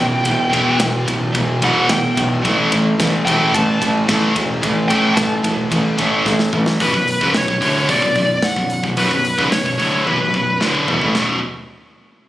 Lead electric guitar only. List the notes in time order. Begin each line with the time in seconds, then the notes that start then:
Already playing: G5
1.64 F#5
1.90 G5
3.25 G5
3.54 A5
4.88 G5
5.15 A5
6.82 B4
7.37 C#5
7.90 D5
8.44 F#5
8.98 B4
9.52 C#5
10.07 B4